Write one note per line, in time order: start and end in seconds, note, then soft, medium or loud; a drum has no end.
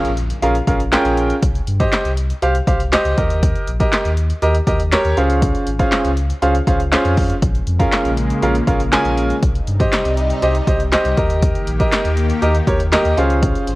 0.00 impact medium
0.05 0.32 A#1 medium
0.05 closed hi-hat medium
0.17 closed hi-hat medium
0.30 closed hi-hat medium
0.42 0.61 A#1 loud
0.42 0.54 C#4 medium
0.42 0.54 F4 medium
0.42 0.54 G#4 medium
0.42 0.54 A#4 medium
0.42 0.54 F5 loud
0.42 closed hi-hat medium
0.55 closed hi-hat medium
0.67 0.95 A#1 medium
0.67 0.79 C#4 loud
0.67 0.79 F4 medium
0.67 0.79 G#4 medium
0.67 0.79 A#4 medium
0.67 0.79 F5 loud
0.67 kick loud
0.67 closed hi-hat medium
0.80 closed hi-hat medium
0.92 1.33 C#4 loud
0.92 1.33 F4 medium
0.92 1.33 G#4 medium
0.92 1.33 A#4 medium
0.92 1.33 G5 loud
0.92 snare loud
0.92 clap loud
0.92 closed hi-hat loud
1.05 1.32 A#1 medium
1.05 closed hi-hat medium
1.17 closed hi-hat medium
1.30 closed hi-hat medium
1.42 1.61 C2 loud
1.42 kick loud
1.42 closed hi-hat loud
1.55 closed hi-hat soft
1.67 1.86 G2 medium
1.67 closed hi-hat medium
1.80 2.09 G4 loud
1.80 2.09 C5 medium
1.80 2.09 D#5 loud
1.80 kick medium
1.80 closed hi-hat medium
1.92 snare loud
1.92 clap loud
1.92 closed hi-hat medium
2.05 2.32 C2 medium
2.05 closed hi-hat medium
2.17 closed hi-hat medium
2.30 closed hi-hat medium
2.42 2.61 C2 loud
2.42 2.54 G4 loud
2.42 2.54 C5 medium
2.42 2.54 F5 loud
2.42 closed hi-hat medium
2.55 closed hi-hat medium
2.67 2.95 C2 medium
2.67 2.79 G4 loud
2.67 2.79 C5 medium
2.67 2.79 F5 loud
2.67 kick loud
2.67 closed hi-hat medium
2.80 closed hi-hat medium
2.92 3.16 G4 loud
2.92 3.17 C5 medium
2.92 3.16 D#5 loud
2.92 snare loud
2.92 clap loud
2.92 closed hi-hat loud
3.05 3.14 C#2 medium
3.05 closed hi-hat medium
3.17 3.54 D#2 loud
3.17 3.67 G4 medium
3.17 3.67 A#4 medium
3.17 3.68 D#5 loud
3.17 kick loud
3.17 closed hi-hat medium
3.30 closed hi-hat medium
3.42 kick loud
3.42 closed hi-hat loud
3.55 closed hi-hat soft
3.67 3.86 A#1 medium
3.67 closed hi-hat medium
3.80 4.09 G4 loud
3.80 4.09 A#4 medium
3.80 4.09 D#5 loud
3.80 kick medium
3.80 closed hi-hat medium
3.92 snare loud
3.92 clap loud
3.92 closed hi-hat medium
4.05 4.32 D#2 medium
4.05 closed hi-hat medium
4.17 closed hi-hat medium
4.30 closed hi-hat medium
4.42 4.61 D#2 loud
4.42 4.54 G4 medium
4.42 4.54 A#4 medium
4.42 4.54 D#5 loud
4.42 closed hi-hat medium
4.55 closed hi-hat medium
4.67 4.95 D#2 loud
4.67 4.79 G4 loud
4.67 4.79 A#4 medium
4.67 4.79 D#5 loud
4.67 kick loud
4.67 closed hi-hat medium
4.80 closed hi-hat medium
4.92 5.17 G4 loud
4.92 5.17 A#4 medium
4.92 5.18 C#5 loud
4.92 snare loud
4.92 clap loud
4.92 closed hi-hat loud
5.05 5.14 D#2 medium
5.05 closed hi-hat soft
5.17 5.54 C#2 loud
5.17 5.67 C#4 medium
5.17 5.67 F4 medium
5.17 5.67 G#4 medium
5.17 5.67 C5 medium
5.17 5.67 F5 loud
5.17 closed hi-hat medium
5.30 closed hi-hat medium
5.42 kick loud
5.42 closed hi-hat loud
5.55 closed hi-hat soft
5.67 5.86 G#1 loud
5.67 closed hi-hat medium
5.80 6.09 C#4 loud
5.80 6.09 F4 medium
5.80 6.09 G#4 loud
5.80 6.09 C5 medium
5.80 6.09 F5 loud
5.80 kick medium
5.80 closed hi-hat medium
5.92 snare loud
5.92 clap loud
5.92 closed hi-hat medium
6.05 6.32 C#2 medium
6.05 closed hi-hat medium
6.17 closed hi-hat medium
6.30 closed hi-hat medium
6.42 6.61 C#2 loud
6.42 6.54 C#4 medium
6.42 6.54 F4 medium
6.42 6.54 G#4 medium
6.42 6.54 C5 medium
6.42 6.54 F5 loud
6.42 closed hi-hat medium
6.55 closed hi-hat medium
6.67 6.95 C#2 medium
6.67 6.79 C#4 loud
6.67 6.79 F4 medium
6.67 6.79 G#4 medium
6.67 6.79 C5 medium
6.67 6.79 F5 loud
6.67 kick loud
6.67 closed hi-hat medium
6.80 closed hi-hat medium
6.92 7.33 C#4 loud
6.92 7.33 F4 medium
6.92 7.33 G#4 medium
6.92 7.33 C5 medium
6.92 7.33 F5 loud
6.92 snare loud
6.92 clap loud
6.92 closed hi-hat loud
7.05 7.32 F2 medium
7.05 closed hi-hat medium
7.17 kick loud
7.17 open hi-hat medium
7.30 closed hi-hat medium
7.42 7.61 A#1 loud
7.42 9.40 C#3 medium
7.42 9.40 G#3 medium
7.42 9.40 A#3 medium
7.42 kick loud
7.42 closed hi-hat loud
7.55 closed hi-hat soft
7.67 7.86 F2 medium
7.67 closed hi-hat medium
7.80 8.09 C#4 loud
7.80 8.09 F4 medium
7.80 8.09 G#4 medium
7.80 8.09 A#4 medium
7.80 8.09 F5 loud
7.80 kick medium
7.80 closed hi-hat medium
7.92 snare loud
7.92 clap loud
7.92 closed hi-hat medium
8.05 8.32 A#1 medium
8.05 closed hi-hat medium
8.17 closed hi-hat medium
8.30 closed hi-hat medium
8.42 8.61 A#1 loud
8.42 8.54 C#4 medium
8.42 8.54 F4 medium
8.42 8.54 G#4 medium
8.42 8.54 A#4 medium
8.42 8.54 F5 loud
8.42 closed hi-hat medium
8.55 closed hi-hat medium
8.67 8.95 A#1 loud
8.67 8.79 C#4 medium
8.67 8.79 F4 medium
8.67 8.79 G#4 medium
8.67 8.79 A#4 medium
8.67 8.79 F5 loud
8.67 kick loud
8.67 closed hi-hat medium
8.80 closed hi-hat medium
8.92 9.33 C#4 loud
8.92 9.33 F4 medium
8.92 9.33 G#4 medium
8.92 9.33 A#4 medium
8.92 9.33 G#5 loud
8.92 snare loud
8.92 clap loud
8.92 closed hi-hat loud
9.05 9.32 A#1 medium
9.05 closed hi-hat medium
9.17 closed hi-hat medium
9.30 closed hi-hat medium
9.42 9.61 C2 loud
9.42 11.16 C3 medium
9.42 11.16 G3 medium
9.42 11.16 D#4 medium
9.42 kick loud
9.42 closed hi-hat loud
9.55 closed hi-hat soft
9.67 9.86 G2 medium
9.67 closed hi-hat medium
9.80 10.09 G4 loud
9.80 10.09 C5 medium
9.80 10.09 D#5 loud
9.80 kick medium
9.80 closed hi-hat medium
9.92 snare loud
9.92 clap loud
9.92 closed hi-hat medium
10.05 10.32 C2 medium
10.05 closed hi-hat medium
10.17 closed hi-hat medium
10.30 closed hi-hat medium
10.42 10.61 C2 loud
10.42 10.54 G4 medium
10.42 10.54 C5 medium
10.42 10.54 D#5 loud
10.42 closed hi-hat medium
10.55 closed hi-hat medium
10.67 10.95 C2 loud
10.67 10.79 G4 medium
10.67 10.79 C5 medium
10.67 10.79 D#5 loud
10.67 kick medium
10.67 closed hi-hat medium
10.80 closed hi-hat medium
10.92 11.16 G4 loud
10.92 11.17 C5 medium
10.92 11.16 D#5 loud
10.92 snare loud
10.92 clap loud
10.92 closed hi-hat loud
11.05 11.14 C2 medium
11.05 closed hi-hat medium
11.17 11.54 D#2 loud
11.17 13.15 D#3 medium
11.17 13.15 A#3 medium
11.17 11.67 G4 loud
11.17 13.15 G4 medium
11.17 11.67 A#4 medium
11.17 11.67 D#5 loud
11.17 kick medium
11.17 closed hi-hat medium
11.30 closed hi-hat medium
11.42 kick loud
11.42 closed hi-hat loud
11.55 closed hi-hat soft
11.67 11.86 A#1 medium
11.67 closed hi-hat medium
11.80 12.09 G4 loud
11.80 12.09 A#4 loud
11.80 12.09 D#5 loud
11.80 kick medium
11.80 closed hi-hat medium
11.92 snare loud
11.92 clap loud
11.92 closed hi-hat medium
12.05 12.32 D#2 medium
12.05 closed hi-hat medium
12.17 closed hi-hat medium
12.30 closed hi-hat medium
12.42 12.61 D#2 loud
12.42 12.54 G4 loud
12.42 12.54 A#4 medium
12.42 12.54 D#5 loud
12.42 closed hi-hat medium
12.55 closed hi-hat medium
12.67 12.95 D#2 loud
12.67 12.79 G4 loud
12.67 12.79 A#4 medium
12.67 12.79 C#5 loud
12.67 kick loud
12.67 closed hi-hat medium
12.80 closed hi-hat medium
12.92 13.17 G4 loud
12.92 13.17 A#4 medium
12.92 13.18 D#5 loud
12.92 snare loud
12.92 clap loud
12.92 closed hi-hat loud
13.05 13.14 D#2 medium
13.05 closed hi-hat medium
13.17 13.54 C#2 loud
13.17 13.75 C#3 medium
13.17 13.67 C#4 medium
13.17 13.67 F4 medium
13.17 13.75 F4 medium
13.17 13.67 G#4 medium
13.17 13.67 C5 medium
13.17 13.75 C5 medium
13.17 13.68 F5 loud
13.17 closed hi-hat medium
13.30 closed hi-hat medium
13.42 kick loud
13.42 closed hi-hat loud
13.55 closed hi-hat soft
13.67 13.75 G#1 medium
13.67 closed hi-hat medium